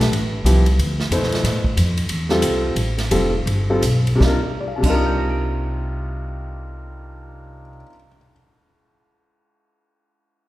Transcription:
Already playing: upright bass B1, grand piano A3 D4 G4 B4
0.01 snare, ride
0.12 upright bass A1, ride
0.44 upright bass C2, grand piano F3 B3 E4 G4, hi-hat pedal, ride
0.66 ride
0.78 upright bass D2, ride
1.00 snare
1.11 upright bass F2, grand piano B2 E4 A4 C5, hi-hat pedal, ride
1.23 snare
1.32 snare, ride
1.44 upright bass A2, snare, ride
1.64 kick
1.77 upright bass F2, hi-hat pedal, ride
1.97 ride
2.09 upright bass E2, ride
2.29 grand piano G3 C4 F4 A4, snare
2.42 upright bass C2, hi-hat pedal, ride
2.75 upright bass A1, ride
2.98 snare, ride
3.11 upright bass F1, grand piano G3 C4 F4 A4, hi-hat pedal, ride
3.46 upright bass G1, ride
3.70 grand piano G3 C4 F4 A4
3.82 upright bass B1, hi-hat pedal, ride
4.07 ride
4.15 grand piano C3 G3
4.20 upright bass C2, grand piano D4 D#4, kick, snare
4.25 grand piano F4 A#4
4.60 grand piano D5
4.68 grand piano F5
4.76 grand piano C3 A5
4.80 upright bass C2, grand piano G3 D4, kick, crash
4.85 grand piano D#4 F4 C6
4.90 grand piano A#4
4.95 grand piano D#6
5.06 grand piano G6
5.18 grand piano A#6
5.30 grand piano D7

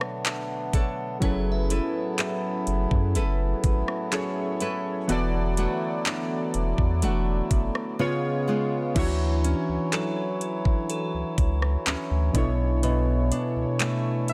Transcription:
Already playing: synth keys B2 F#3 D4 A4 C#5, harmonium D3 A3 B3 D4, nylon-string guitar B3 D4 A4 C#5
0.01 cross-stick
0.25 clap, closed hi-hat
0.73 nylon-string guitar D4 A4 C#5, kick, closed hi-hat
1.20 sub bass F#1, harmonium A2 A3 E4, synth keys F#3 C#4 E4 G#4 A4, nylon-string guitar F#3, synth bell C#5, kick, closed hi-hat
1.25 synth keys B4
1.52 synth bell E5
1.70 nylon-string guitar E4 A4 B4, closed hi-hat
2.18 nylon-string guitar A4, clap, closed hi-hat
2.67 sub bass F#1, closed hi-hat
2.91 sub bass F#2, kick
3.15 sub bass F#1, nylon-string guitar E4 A4 B4, closed hi-hat
3.64 sub bass G#1, kick, closed hi-hat
3.88 cross-stick
4.12 synth keys F#3 C#4 E4 G#4 A4 C#5, clap, closed hi-hat
4.60 nylon-string guitar E4 A4 B4, closed hi-hat
5.08 sub bass E1, harmonium D3 F#3 A3, synth keys E3 B3 F#4 A4, nylon-string guitar E3, closed hi-hat
5.12 synth keys D5
5.57 nylon-string guitar A3 D4 F#4, closed hi-hat
6.05 nylon-string guitar D4, clap, closed hi-hat
6.54 sub bass E1, closed hi-hat
6.78 sub bass E2, kick
7.02 sub bass E1, nylon-string guitar A3 D4 F#4, closed hi-hat
7.51 sub bass F#1, kick, closed hi-hat
7.75 cross-stick
7.99 synth keys C#3 B3 F4 G#4 C#5, nylon-string guitar C#3, harmonium C#3 G#3 B3 F4
8.48 nylon-string guitar G#3 B3 F4
8.94 sub bass D2, synth keys E3 D4 E4 F#4, harmonium E3 F#3 E4 C#5, kick, closed hi-hat, crash
8.99 synth keys C#5
9.44 nylon-string guitar C#4, closed hi-hat
9.69 sub bass C#2
9.93 nylon-string guitar F#3, synth bell A4, clap, closed hi-hat
10.41 closed hi-hat
10.65 kick
10.90 synth bell A4, closed hi-hat
11.14 sub bass C#2
11.38 sub bass C#2, kick, closed hi-hat
11.62 cross-stick
11.86 sub bass D2, nylon-string guitar C#4, clap, closed hi-hat
12.11 sub bass D2
12.33 sub bass B1, synth keys B2 B3 D4 E4 A4, nylon-string guitar B2, harmonium A3, kick, closed hi-hat
12.38 synth keys C#5
12.83 nylon-string guitar B2, closed hi-hat
13.32 nylon-string guitar D4, closed hi-hat
13.56 sub bass C#2
13.80 nylon-string guitar A3, clap, closed hi-hat
14.28 synth keys E5, closed hi-hat

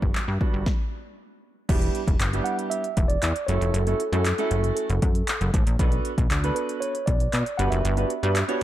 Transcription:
Already playing: grand piano G3 B3 D4 F#4
0.02 analog synth bass G1, kick
0.15 analog synth bass G2, clap
0.28 analog synth bass G2
0.41 grand piano G3 B3 D4 F#4, kick
0.54 analog synth bass G1
0.66 kick, snare
1.69 analog synth bass E1, grand piano G3 B3 D4 E4 G4, kick, closed hi-hat, crash
1.82 closed hi-hat
1.95 closed hi-hat
2.08 analog synth bass E1, kick, closed hi-hat
2.20 analog synth bass G1, clap, closed hi-hat
2.33 grand piano G3 B3 D4 E4 G4, closed hi-hat
2.44 tine electric piano F#5, closed hi-hat
2.59 closed hi-hat
2.70 tine electric piano E5, closed hi-hat
2.84 closed hi-hat
2.97 analog synth bass E1, kick, closed hi-hat
3.08 tine electric piano D5, closed hi-hat
3.22 analog synth bass E2, clap, closed hi-hat
3.36 closed hi-hat
3.47 analog synth bass F#1, grand piano A3 C#4 E4 F#4 A4, tine electric piano C#5, closed hi-hat
3.61 analog synth bass F1, closed hi-hat
3.72 analog synth bass F#1, tine electric piano A4, closed hi-hat
3.87 grand piano A3 C#4 E4 F#4 A4, closed hi-hat
4.00 closed hi-hat
4.12 analog synth bass F#2, grand piano A3 C#4 E4 F#4 A4, closed hi-hat
4.25 clap, closed hi-hat
4.38 grand piano A3 C#4 E4 F#4 A4, closed hi-hat
4.51 analog synth bass F#1, closed hi-hat
4.64 closed hi-hat
4.75 tine electric piano A4, closed hi-hat
4.90 analog synth bass F#1, closed hi-hat
5.02 analog synth bass F#2, kick, closed hi-hat
5.15 closed hi-hat
5.28 clap, closed hi-hat
5.41 analog synth bass F#1, closed hi-hat
5.54 analog synth bass A1, kick, closed hi-hat
5.67 analog synth bass A#1, closed hi-hat
5.79 analog synth bass B1, grand piano B3 D4 F#4 A4 B4, kick, closed hi-hat
5.92 closed hi-hat
6.05 closed hi-hat
6.18 analog synth bass B1, kick, closed hi-hat
6.31 analog synth bass D2, clap, closed hi-hat
6.44 grand piano B3 D4 F#4 A4 B4, closed hi-hat
6.55 tine electric piano B4, closed hi-hat
6.69 closed hi-hat
6.80 tine electric piano C#5, closed hi-hat
6.95 closed hi-hat
7.06 analog synth bass B1, tine electric piano D5, kick, closed hi-hat
7.20 closed hi-hat
7.33 analog synth bass B2, clap, closed hi-hat
7.46 closed hi-hat
7.58 analog synth bass G1, grand piano B3 D4 F#4 G4 B4, tine electric piano F#5, closed hi-hat
7.70 analog synth bass F#1, tine electric piano E5, closed hi-hat
7.85 analog synth bass G1, closed hi-hat
7.97 grand piano B3 D4 F#4 G4 B4, closed hi-hat
8.10 closed hi-hat
8.23 analog synth bass G2, grand piano B3 D4 F#4 G4 B4, closed hi-hat
8.36 clap, closed hi-hat
8.48 grand piano B3 D4 F#4 G4 C#5, closed hi-hat

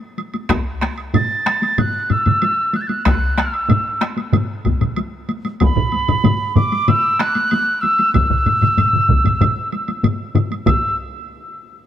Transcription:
0.18 taiko high, high woodblock
0.34 taiko high, high woodblock
0.50 taiko rim, taiko, taiko high, high woodblock
0.82 taiko rim, taiko high, high woodblock
0.98 high woodblock
1.14 piccolo A6, taiko low-mid, taiko mid, taiko high, high woodblock
1.46 taiko rim, taiko high, high woodblock
1.62 taiko high, high woodblock
1.78 piccolo F#6, taiko low-mid, taiko mid, taiko high, high woodblock
2.10 piccolo E6, taiko low-mid, taiko mid, taiko high, high woodblock
2.26 taiko low-mid, taiko mid, taiko high, high woodblock
2.42 taiko high, high woodblock
2.74 piccolo F#6, taiko high, high woodblock
2.81 piccolo A6
2.87 piccolo F#6, taiko high, high woodblock
3.06 piccolo F#6, taiko rim, taiko, taiko high, high woodblock
3.38 piccolo E6, taiko rim, taiko high, high woodblock
3.54 high woodblock
3.69 taiko low-mid, taiko mid, taiko high, high woodblock
4.01 taiko rim, taiko high, high woodblock
4.17 taiko high, high woodblock
4.33 taiko low-mid, taiko mid, taiko high, high woodblock
4.65 taiko, taiko low-mid, taiko mid, taiko high, high woodblock
4.81 taiko low-mid, taiko mid, taiko high, high woodblock
4.96 taiko high, high woodblock
5.29 taiko high, high woodblock
5.45 taiko high, high woodblock
5.60 piccolo B5, taiko, taiko high, high woodblock
5.76 taiko low-mid, taiko mid
5.92 taiko high, high woodblock
6.08 taiko low-mid, taiko mid, high woodblock
6.24 taiko low-mid, taiko mid, taiko high, high woodblock
6.56 piccolo D6, taiko low-mid, taiko mid, taiko high, high woodblock
6.72 taiko high, high woodblock
6.88 piccolo E6, taiko low-mid, taiko mid, taiko high, high woodblock
7.19 piccolo F#6, taiko rim, taiko high, high woodblock
7.35 taiko high, high woodblock
7.51 taiko high, high woodblock
7.81 piccolo E6, taiko high, high woodblock
7.99 taiko high, high woodblock
8.13 piccolo E6, taiko, taiko low-mid, taiko mid, taiko high, high woodblock
8.30 taiko low-mid, taiko mid
8.46 taiko low-mid, taiko mid, taiko high, high woodblock
8.61 taiko low-mid, taiko mid, taiko high, high woodblock
8.77 taiko low-mid, taiko mid, taiko high, high woodblock
8.93 taiko low-mid, taiko mid
9.09 taiko, taiko low-mid, taiko mid, taiko high
9.25 taiko low-mid, taiko mid, taiko high, high woodblock
9.41 taiko low-mid, taiko mid, taiko high, high woodblock
9.72 taiko high, high woodblock
9.88 taiko high, high woodblock
10.03 taiko low-mid, taiko mid, taiko high, high woodblock
10.35 taiko low-mid, taiko mid, taiko high, high woodblock
10.51 taiko high, high woodblock
10.66 piccolo E6, taiko, taiko low-mid, taiko mid, taiko high, high woodblock

